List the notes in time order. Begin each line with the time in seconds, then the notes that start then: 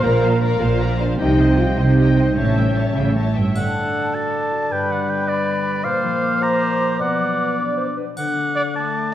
Already playing: A#3 A#4 C5 F5
0.03 A#1 A#2 A#4 D5 A#5
0.22 F3 A#4 C5 F5
0.41 A#4 C5 D5 A#5
0.59 A#1 A#2 F4 A#4 C5 F5
0.80 A#4 D5 A#5
0.98 A#3 D4 A#4 C5 D5 F5
1.18 C2 C3 D#4 G4 C5 D#5 G5
1.37 G3 C5 D#5 G5
1.57 F4 G4 C5 D#5 F5 G5
1.76 C2 C3 D#4 G4 C5 D#5 G5
1.96 G4 C5 D#5 G5
2.17 G3 C5 D#5 G5
2.35 A1 A2 C#4 C#5 E5 A5
2.40 E5
2.57 G3 C#5 E5 G5
2.76 C#5 E5 A5
2.95 A1 C#3 G4 C#5 E5 G5
3.15 A2 C#5 E5 A5
3.35 G2 G3 C#5 E5 G5
3.54 D3 A4 D5 F#5 A5, triangle
3.75 D4
3.94 A3
4.14 F#4 A5
4.33 D5
4.52 F#4
4.70 G2 G3 B4 G5 B5
4.90 D3 F#5
5.08 B3 G5
5.27 G4 D5
5.46 D5
5.66 G4
5.83 A#2 A#3 C5 F5 D6
6.04 F3
6.41 F4 C5 A#5
6.80 F4
6.99 B2 B3 B4 D5 F#5
7.18 F#3
7.38 B3
7.58 D4 D5
7.77 C5 D5
7.97 D4 B4
8.17 D3 D4 A4 F#5 D6, triangle
8.36 A3
8.55 D4 D5
8.75 A3 A5
8.94 A4